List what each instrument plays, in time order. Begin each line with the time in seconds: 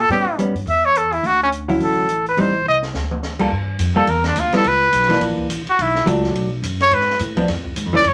0.00 trumpet A4
0.09 upright bass A2, hollow-body jazz guitar G3 B3 C#4, trumpet G4, open hi-hat
0.39 hollow-body jazz guitar G3 B3 C#4, closed hi-hat
0.54 upright bass G2, open hi-hat
0.66 upright bass E2, trumpet E5, open hi-hat
0.85 trumpet C#5
0.95 trumpet A4, closed hi-hat
1.12 trumpet E4, open hi-hat
1.23 upright bass D2, trumpet F#4, open hi-hat
1.43 trumpet C#4
1.52 closed hi-hat
1.68 hollow-body jazz guitar D3 F#3 C#4 E4, open hi-hat
1.80 upright bass A1, trumpet A4, open hi-hat
2.09 closed hi-hat
2.26 trumpet B4, open hi-hat
2.37 upright bass A1, hollow-body jazz guitar G3 C4 D#4, trumpet C5, open hi-hat
2.66 upright bass C2, trumpet D#5
2.82 snare
2.94 upright bass D2, snare
3.11 mid tom
3.23 snare
3.39 hollow-body jazz guitar G3 A#3 F4 A4, kick, crash
3.51 upright bass G2
3.79 upright bass F2, hi-hat pedal, ride
3.96 hollow-body jazz guitar G3 A#3 F4 A4, trumpet A4
4.07 upright bass E2, trumpet A#4, ride
4.24 trumpet D4, snare, ride
4.36 upright bass D2, trumpet F4, hi-hat pedal, ride
4.52 hollow-body jazz guitar G3 B3 E4, trumpet A4, muted upright bass stroke, snare, ride
4.64 upright bass C#2, trumpet B4, ride
4.93 upright bass B1, hi-hat pedal, ride
5.02 snare
5.09 hollow-body jazz guitar E3 A#3 D4, snare, ride
5.21 upright bass A#1, ride
5.38 muted upright bass stroke, kick
5.49 upright bass A1, hi-hat pedal, ride
5.67 trumpet F#4, muted upright bass stroke, ride
5.79 upright bass B1, trumpet E4, ride
5.95 snare
6.06 upright bass C#2, hollow-body jazz guitar F#3 A3 D4, hi-hat pedal, ride
6.24 snare
6.34 upright bass B1, ride
6.62 upright bass F#2, hi-hat pedal, ride
6.80 trumpet C#5, snare, ride
6.91 upright bass G#2, trumpet B4, ride
7.01 snare
7.10 snare
7.19 upright bass A2, hi-hat pedal, ride
7.36 hollow-body jazz guitar F3 B3 D4, kick, ride
7.48 upright bass F2, snare, ride
7.65 kick
7.76 upright bass G#2, hi-hat pedal, ride
7.86 upright bass F2
7.93 upright bass C#2, hollow-body jazz guitar E3 A3 C#4, trumpet D5
8.04 upright bass F#2, trumpet C#5, ride